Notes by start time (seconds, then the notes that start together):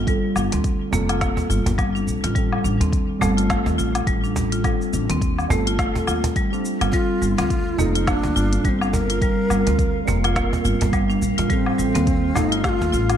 Already playing: G1 G3 C4 F4 A4
0.05 G3 C4 F4, kick, closed hi-hat, shaker
0.09 A4
0.36 G1 D4, low woodblock, shaker
0.52 D2 C4, cajon slap, closed hi-hat, shaker
0.64 kick, closed hi-hat, shaker
0.91 F1 G3 A#3 C4 F4 A4, cajon bass, shaker
1.09 F4, closed hi-hat, low woodblock, shaker
1.21 A#3, kick, snare, closed hi-hat, shaker
1.37 cajon bass, shaker
1.50 G1 F4, shaker
1.66 G1, cajon bass, closed hi-hat, shaker
1.78 G3, kick, closed hi-hat, low woodblock, shaker
1.95 D4, shaker
2.07 A#1, shaker
2.24 A1 F4, cajon slap, closed hi-hat, shaker
2.34 G3 C4 F4 A4, kick, closed hi-hat, shaker
2.53 low woodblock
2.64 A1 D4, shaker
2.80 D#2 C4, cajon slap, closed hi-hat, shaker
2.92 kick, closed hi-hat, shaker
3.19 G1 G3 A3 C4 F4, cajon bass, low woodblock, shaker
3.23 A4
3.37 F4, closed hi-hat, shaker
3.50 A3, kick, snare, closed hi-hat, shaker
3.66 D#2, cajon slap, shaker
3.78 A1 F4, shaker
3.95 closed hi-hat, low woodblock, shaker
4.07 A1 G3, kick, closed hi-hat, shaker
4.24 D4, shaker
4.36 cajon bass, shaker
4.52 F4, closed hi-hat, shaker
4.62 G3 C4 F4 A4, kick, closed hi-hat, low woodblock, shaker
4.82 shaker
4.93 A1 D4, shaker
5.09 D#2 C4, cajon slap, closed hi-hat, shaker
5.21 kick, closed hi-hat, shaker
5.38 low woodblock, shaker
5.48 G1 G3 A3 C4 F4, cajon bass, shaker
5.52 A4
5.67 F4, closed hi-hat, shaker
5.79 A3, kick, snare, closed hi-hat, shaker
5.95 cajon bass, cajon slap, shaker
6.07 D#2 F4, low woodblock, shaker
6.24 cajon bass, closed hi-hat, shaker
6.36 G3, kick, closed hi-hat, shaker
6.51 G3 C4 D4 F4 A4, shaker
6.65 shaker
6.81 G1 F4, cajon slap, closed hi-hat, low woodblock, shaker
6.91 G3 C4 F4 A4 F5, kick, closed hi-hat, shaker
7.22 G1 G3, shaker
7.38 D2 C4 F4, cajon slap, closed hi-hat, low woodblock, shaker
7.50 kick, closed hi-hat, shaker
7.77 F1 G3 A#3 C4 D#4 F4 A4, cajon bass, shaker
7.95 F4, closed hi-hat, shaker
8.07 A#3 D4 D#4, kick, snare, closed hi-hat, low woodblock, shaker
8.23 D2, cajon slap, shaker
8.36 G1 F4, shaker
8.53 closed hi-hat, shaker
8.64 G1 G3 D4, kick, closed hi-hat, shaker
8.69 C4
8.81 D4, low woodblock, shaker
8.93 A#4, cajon bass, shaker
9.10 F4, closed hi-hat, shaker
9.20 G3 C4 F4 A#4, kick, closed hi-hat, shaker
9.50 G1 G3, low woodblock, shaker
9.67 D2 C4, cajon slap, closed hi-hat, shaker
9.79 kick, closed hi-hat, shaker
10.05 F1 G3 A#3 C4 F4, cajon bass, shaker
10.09 A#4
10.24 F4, closed hi-hat, low woodblock, shaker
10.36 A#3, kick, snare, closed hi-hat, shaker
10.53 cajon bass, shaker
10.65 G1 F4, shaker
10.81 G1, cajon bass, closed hi-hat, shaker
10.93 G3, kick, closed hi-hat, low woodblock, shaker
11.10 D4, shaker
11.22 A#1, shaker
11.38 A1 F4, cajon slap, closed hi-hat, shaker
11.48 G3 C4 F4 A4, kick, closed hi-hat, shaker
11.66 low woodblock
11.78 A1 G3, shaker
11.95 D#2 C4, cajon slap, closed hi-hat, shaker
12.07 kick, closed hi-hat, shaker
12.34 G1 G3 A3 C4 D#4 F4 A4, cajon bass, low woodblock, shaker
12.52 F4, closed hi-hat, shaker
12.64 A3 G4, kick, snare, closed hi-hat, shaker
12.69 F4
12.81 D#2, cajon slap, shaker
12.92 A1 F4, shaker
13.10 closed hi-hat, low woodblock, shaker